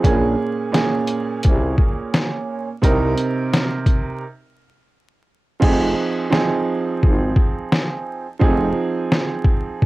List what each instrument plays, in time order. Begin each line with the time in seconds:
0.02 fm bass A#1, upright piano A#2 A#3 C#4 G#4, kick, closed hi-hat
0.72 upright piano A#2 A#3 C#4 G#4, snare, closed hi-hat
1.07 closed hi-hat
1.43 fm bass C2, kick, closed hi-hat
1.78 kick
2.14 snare, closed hi-hat
2.82 fm bass C2, upright piano C3 C4 D#4 A#4, kick, closed hi-hat
3.18 closed hi-hat
3.53 snare, closed hi-hat
3.86 kick, closed hi-hat
5.60 fm bass F1, upright piano F3 C4 D#4 G#4, kick, crash
6.30 upright piano F3 C4 D#4 G#4, snare
7.03 fm bass G#1, kick
7.36 kick
7.72 snare
8.39 fm bass F1, upright piano F3 C4 D#4 G#4, kick
9.12 snare
9.44 kick
9.82 fm bass G#1, kick